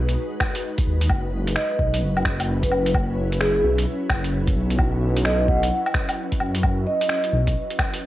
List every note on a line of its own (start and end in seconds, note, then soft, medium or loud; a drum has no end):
0.00 0.16 B1 loud
0.00 1.10 G#3 medium
0.00 1.10 D#4 medium
0.00 2.90 F#4 medium
0.00 8.06 B4 medium
0.09 closed hi-hat medium
0.40 finger snap loud
0.40 kick loud
0.40 low woodblock medium
0.55 closed hi-hat medium
0.78 kick loud
0.78 closed hi-hat soft
0.87 1.08 D#2 medium
1.01 closed hi-hat medium
1.09 1.55 F#1 loud
1.09 8.06 F#3 medium
1.09 kick loud
1.09 low woodblock medium
1.30 8.06 C#4 medium
1.47 closed hi-hat medium
1.55 8.06 E4 medium
1.55 1.94 D#5 medium
1.55 finger snap loud
1.79 2.03 B1 loud
1.79 kick loud
1.94 closed hi-hat medium
2.02 3.62 F#1 medium
2.17 low woodblock medium
2.25 finger snap loud
2.25 kick loud
2.40 closed hi-hat medium
2.40 low woodblock soft
2.63 2.87 B4 medium
2.63 kick medium
2.63 closed hi-hat soft
2.71 low woodblock soft
2.86 closed hi-hat medium
2.94 kick loud
2.94 low woodblock medium
3.32 closed hi-hat medium
3.40 3.50 G#4 medium
3.40 finger snap loud
3.55 3.61 G#4 medium
3.63 3.85 B1 loud
3.78 closed hi-hat medium
4.10 4.55 F#1 medium
4.10 finger snap medium
4.10 kick loud
4.10 low woodblock medium
4.24 closed hi-hat medium
4.48 kick loud
4.48 closed hi-hat soft
4.56 5.47 B1 medium
4.70 closed hi-hat medium
4.79 kick loud
4.79 low woodblock medium
5.16 closed hi-hat medium
5.25 5.63 D#5 medium
5.25 finger snap loud
5.48 5.70 B1 loud
5.48 5.58 F#5 medium
5.48 kick loud
5.63 5.68 F#5 medium
5.63 closed hi-hat medium
5.86 low woodblock medium
5.94 finger snap loud
5.94 kick loud
6.09 closed hi-hat medium
6.09 low woodblock medium
6.32 kick medium
6.32 closed hi-hat soft
6.40 6.86 F#2 medium
6.40 low woodblock soft
6.55 closed hi-hat medium
6.63 kick loud
6.63 low woodblock medium
6.87 7.33 D#5 medium
7.01 closed hi-hat medium
7.09 finger snap loud
7.24 closed hi-hat soft
7.33 7.55 B1 loud
7.47 kick medium
7.47 closed hi-hat medium
7.71 closed hi-hat soft
7.79 finger snap loud
7.79 kick loud
7.79 low woodblock medium
7.94 closed hi-hat medium